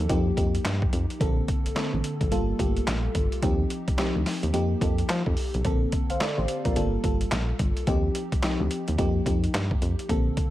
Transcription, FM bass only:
0, 0, Header, 1, 2, 480
1, 0, Start_track
1, 0, Tempo, 555556
1, 1040, Time_signature, 4, 2, 24, 8
1, 9074, End_track
2, 0, Start_track
2, 0, Title_t, "FM bass"
2, 0, Program_c, 0, 39
2, 85, Note_on_c, 0, 41, 103
2, 265, Note_off_c, 0, 41, 0
2, 323, Note_on_c, 0, 41, 78
2, 504, Note_off_c, 0, 41, 0
2, 563, Note_on_c, 0, 43, 100
2, 744, Note_off_c, 0, 43, 0
2, 803, Note_on_c, 0, 41, 87
2, 914, Note_off_c, 0, 41, 0
2, 1045, Note_on_c, 0, 34, 112
2, 1225, Note_off_c, 0, 34, 0
2, 1432, Note_on_c, 0, 33, 50
2, 1468, Note_off_c, 0, 33, 0
2, 1669, Note_on_c, 0, 33, 100
2, 1739, Note_off_c, 0, 33, 0
2, 1910, Note_on_c, 0, 34, 96
2, 1979, Note_off_c, 0, 34, 0
2, 2004, Note_on_c, 0, 31, 99
2, 2185, Note_off_c, 0, 31, 0
2, 2243, Note_on_c, 0, 31, 77
2, 2424, Note_off_c, 0, 31, 0
2, 2486, Note_on_c, 0, 34, 93
2, 2666, Note_off_c, 0, 34, 0
2, 2724, Note_on_c, 0, 31, 91
2, 2834, Note_off_c, 0, 31, 0
2, 2964, Note_on_c, 0, 39, 107
2, 3145, Note_off_c, 0, 39, 0
2, 3352, Note_on_c, 0, 38, 45
2, 3388, Note_off_c, 0, 38, 0
2, 3591, Note_on_c, 0, 38, 88
2, 3660, Note_off_c, 0, 38, 0
2, 3829, Note_on_c, 0, 39, 96
2, 3899, Note_off_c, 0, 39, 0
2, 3921, Note_on_c, 0, 41, 94
2, 4102, Note_off_c, 0, 41, 0
2, 4162, Note_on_c, 0, 41, 88
2, 4344, Note_off_c, 0, 41, 0
2, 4406, Note_on_c, 0, 53, 108
2, 4515, Note_off_c, 0, 53, 0
2, 4550, Note_on_c, 0, 41, 95
2, 4619, Note_off_c, 0, 41, 0
2, 4793, Note_on_c, 0, 35, 94
2, 4861, Note_off_c, 0, 35, 0
2, 4883, Note_on_c, 0, 34, 108
2, 5064, Note_off_c, 0, 34, 0
2, 5276, Note_on_c, 0, 33, 47
2, 5311, Note_off_c, 0, 33, 0
2, 5512, Note_on_c, 0, 33, 92
2, 5581, Note_off_c, 0, 33, 0
2, 5750, Note_on_c, 0, 34, 94
2, 5819, Note_off_c, 0, 34, 0
2, 5848, Note_on_c, 0, 31, 102
2, 6027, Note_off_c, 0, 31, 0
2, 6084, Note_on_c, 0, 31, 81
2, 6265, Note_off_c, 0, 31, 0
2, 6325, Note_on_c, 0, 34, 104
2, 6505, Note_off_c, 0, 34, 0
2, 6563, Note_on_c, 0, 31, 93
2, 6673, Note_off_c, 0, 31, 0
2, 6803, Note_on_c, 0, 39, 112
2, 6984, Note_off_c, 0, 39, 0
2, 7193, Note_on_c, 0, 38, 45
2, 7229, Note_off_c, 0, 38, 0
2, 7433, Note_on_c, 0, 38, 99
2, 7501, Note_off_c, 0, 38, 0
2, 7676, Note_on_c, 0, 39, 94
2, 7743, Note_off_c, 0, 39, 0
2, 7765, Note_on_c, 0, 41, 99
2, 7945, Note_off_c, 0, 41, 0
2, 8005, Note_on_c, 0, 41, 83
2, 8185, Note_off_c, 0, 41, 0
2, 8247, Note_on_c, 0, 43, 96
2, 8426, Note_off_c, 0, 43, 0
2, 8485, Note_on_c, 0, 41, 88
2, 8595, Note_off_c, 0, 41, 0
2, 8725, Note_on_c, 0, 34, 104
2, 8905, Note_off_c, 0, 34, 0
2, 9074, End_track
0, 0, End_of_file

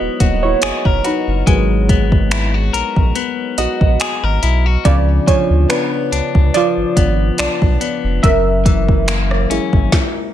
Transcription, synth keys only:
0, 0, Header, 1, 2, 480
1, 0, Start_track
1, 0, Key_signature, 5, "minor"
1, 0, Tempo, 845070
1, 837, Time_signature, 4, 2, 24, 8
1, 5871, End_track
2, 0, Start_track
2, 0, Title_t, "Synth keys"
2, 0, Program_c, 0, 88
2, 0, Control_c, 0, 64, 127
2, 0, Note_on_c, 0, 54, 55
2, 0, Note_on_c, 0, 59, 61
2, 0, Note_on_c, 0, 63, 65
2, 0, Note_on_c, 0, 64, 70
2, 0, Note_on_c, 0, 66, 71
2, 0, Note_on_c, 0, 70, 50
2, 0, Note_on_c, 0, 71, 85
2, 0, Note_on_c, 0, 72, 68
2, 0, Note_on_c, 0, 73, 85
2, 0, Note_on_c, 0, 75, 99
2, 109, Note_off_c, 0, 54, 0
2, 113, Note_off_c, 0, 59, 0
2, 116, Note_on_c, 0, 54, 48
2, 119, Note_on_c, 0, 58, 47
2, 120, Note_on_c, 0, 59, 53
2, 228, Note_off_c, 0, 66, 0
2, 243, Note_off_c, 0, 73, 0
2, 243, Note_on_c, 0, 73, 96
2, 254, Note_off_c, 0, 64, 0
2, 254, Note_on_c, 0, 64, 71
2, 256, Note_off_c, 0, 75, 0
2, 333, Note_off_c, 0, 54, 0
2, 335, Note_off_c, 0, 58, 0
2, 335, Note_off_c, 0, 59, 0
2, 572, Note_off_c, 0, 73, 0
2, 578, Note_off_c, 0, 64, 0
2, 596, Note_off_c, 0, 71, 0
2, 596, Note_on_c, 0, 71, 81
2, 606, Note_off_c, 0, 63, 0
2, 606, Note_on_c, 0, 63, 65
2, 815, Note_off_c, 0, 70, 0
2, 825, Note_off_c, 0, 63, 0
2, 834, Note_on_c, 0, 68, 75
2, 838, Note_on_c, 0, 54, 58
2, 840, Note_on_c, 0, 58, 50
2, 843, Note_on_c, 0, 59, 62
2, 844, Note_off_c, 0, 71, 0
2, 846, Note_off_c, 0, 59, 0
2, 846, Note_on_c, 0, 59, 60
2, 1533, Note_off_c, 0, 68, 0
2, 1534, Note_off_c, 0, 54, 0
2, 1536, Note_off_c, 0, 58, 0
2, 1539, Note_off_c, 0, 59, 0
2, 2034, Note_on_c, 0, 75, 89
2, 2044, Note_on_c, 0, 66, 72
2, 2738, Note_off_c, 0, 66, 0
2, 2754, Note_on_c, 0, 74, 94
2, 2757, Note_on_c, 0, 53, 58
2, 2762, Note_on_c, 0, 59, 52
2, 2764, Note_on_c, 0, 62, 63
2, 2764, Note_on_c, 0, 65, 74
2, 2765, Control_c, 0, 64, 0
2, 2766, Note_off_c, 0, 72, 0
2, 2777, Note_off_c, 0, 75, 0
2, 2853, Control_c, 0, 64, 127
2, 2984, Note_off_c, 0, 65, 0
2, 2995, Note_on_c, 0, 73, 80
2, 3003, Note_off_c, 0, 74, 0
2, 3006, Note_on_c, 0, 65, 65
2, 3084, Note_off_c, 0, 53, 0
2, 3086, Note_off_c, 0, 59, 0
2, 3087, Note_off_c, 0, 62, 0
2, 3225, Note_off_c, 0, 65, 0
2, 3234, Note_on_c, 0, 71, 84
2, 3243, Note_off_c, 0, 73, 0
2, 3246, Note_on_c, 0, 62, 66
2, 3699, Note_off_c, 0, 62, 0
2, 3716, Note_on_c, 0, 74, 96
2, 3729, Note_on_c, 0, 65, 77
2, 3730, Note_off_c, 0, 71, 0
2, 4660, Note_off_c, 0, 65, 0
2, 4674, Note_on_c, 0, 76, 106
2, 4685, Control_c, 0, 64, 0
2, 4686, Note_on_c, 0, 70, 81
2, 4705, Note_off_c, 0, 74, 0
2, 4776, Control_c, 0, 64, 127
2, 5397, Note_on_c, 0, 56, 58
2, 5401, Note_on_c, 0, 58, 53
2, 5404, Note_on_c, 0, 64, 64
2, 5612, Note_off_c, 0, 76, 0
2, 5619, Note_off_c, 0, 70, 0
2, 5723, Note_off_c, 0, 56, 0
2, 5725, Note_off_c, 0, 58, 0
2, 5727, Note_off_c, 0, 64, 0
2, 5871, End_track
0, 0, End_of_file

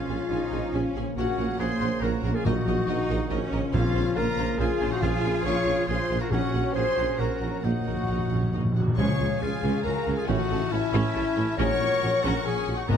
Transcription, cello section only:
0, 0, Header, 1, 2, 480
1, 0, Start_track
1, 0, Tempo, 429492
1, 1308, Time_signature, 3, 2, 24, 8
1, 7059, Tempo, 444444
1, 9939, Tempo, 434153
1, 14347, End_track
2, 0, Start_track
2, 0, Title_t, "Cello section"
2, 0, Program_c, 0, 48
2, 0, Note_on_c, 0, 61, 65
2, 329, Note_off_c, 0, 61, 0
2, 343, Note_on_c, 0, 63, 84
2, 815, Note_off_c, 0, 63, 0
2, 824, Note_on_c, 0, 61, 78
2, 1308, Note_off_c, 0, 61, 0
2, 1309, Note_on_c, 0, 58, 76
2, 2720, Note_off_c, 0, 58, 0
2, 2748, Note_on_c, 0, 54, 73
2, 3222, Note_on_c, 0, 63, 93
2, 3229, Note_off_c, 0, 54, 0
2, 3692, Note_off_c, 0, 63, 0
2, 3700, Note_on_c, 0, 61, 98
2, 4170, Note_off_c, 0, 61, 0
2, 4181, Note_on_c, 0, 60, 84
2, 4658, Note_off_c, 0, 60, 0
2, 4659, Note_on_c, 0, 58, 90
2, 5127, Note_off_c, 0, 58, 0
2, 5136, Note_on_c, 0, 65, 105
2, 7059, Note_off_c, 0, 65, 0
2, 7059, Note_on_c, 0, 61, 79
2, 8459, Note_off_c, 0, 61, 0
2, 8490, Note_on_c, 0, 58, 61
2, 9676, Note_off_c, 0, 58, 0
2, 9938, Note_on_c, 0, 49, 70
2, 10027, Note_off_c, 0, 49, 0
2, 10180, Note_on_c, 0, 49, 61
2, 10268, Note_off_c, 0, 49, 0
2, 10425, Note_on_c, 0, 49, 61
2, 10514, Note_off_c, 0, 49, 0
2, 10658, Note_on_c, 0, 49, 85
2, 10746, Note_off_c, 0, 49, 0
2, 10903, Note_on_c, 0, 49, 65
2, 10991, Note_off_c, 0, 49, 0
2, 11139, Note_on_c, 0, 49, 61
2, 11227, Note_off_c, 0, 49, 0
2, 11383, Note_on_c, 0, 45, 93
2, 11471, Note_off_c, 0, 45, 0
2, 11623, Note_on_c, 0, 45, 73
2, 11711, Note_off_c, 0, 45, 0
2, 11862, Note_on_c, 0, 45, 80
2, 11950, Note_off_c, 0, 45, 0
2, 12103, Note_on_c, 0, 45, 101
2, 12191, Note_off_c, 0, 45, 0
2, 12346, Note_on_c, 0, 45, 83
2, 12434, Note_off_c, 0, 45, 0
2, 12587, Note_on_c, 0, 45, 73
2, 12676, Note_off_c, 0, 45, 0
2, 12830, Note_on_c, 0, 46, 97
2, 12919, Note_off_c, 0, 46, 0
2, 13072, Note_on_c, 0, 46, 72
2, 13161, Note_off_c, 0, 46, 0
2, 13312, Note_on_c, 0, 46, 78
2, 13400, Note_off_c, 0, 46, 0
2, 13547, Note_on_c, 0, 46, 94
2, 13635, Note_off_c, 0, 46, 0
2, 13791, Note_on_c, 0, 46, 69
2, 13879, Note_off_c, 0, 46, 0
2, 14030, Note_on_c, 0, 46, 61
2, 14119, Note_off_c, 0, 46, 0
2, 14272, Note_on_c, 0, 44, 75
2, 14347, Note_off_c, 0, 44, 0
2, 14347, End_track
0, 0, End_of_file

